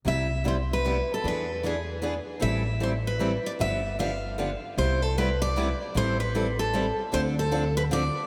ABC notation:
X:1
M:3/4
L:1/8
Q:"Swing" 1/4=152
K:C
V:1 name="Steel-string acoustic guitar"
e2 c B2 A | B2 ^G2 z2 | e2 c B2 d | e2 f2 z2 |
c A B d2 z | c B2 A2 z | c A2 B d2 |]
V:2 name="Steel-string acoustic guitar"
[C,G,B,EG] z [C,G,B,EG] z [C,G,B,EG] z | [E,B,D^G] z [E,B,DG] z [E,B,DG] z | [E,G,CEA] z [E,G,CEA] z [E,G,CEA] z | [D,F,B,DG] z [D,F,B,DG] z [D,F,B,DG] z |
[C,G,B,EG] z [C,G,B,EG] z [C,G,B,EG] z | [E,G,CEA] z [E,G,CEA] z [E,G,CEA] z | [D,F,CDA] z [D,F,CDA] z [D,F,CDA] z |]
V:3 name="Upright bass" clef=bass
C,,6 | E,,6 | A,,,6 | G,,,6 |
C,,6 | A,,,6 | D,,6 |]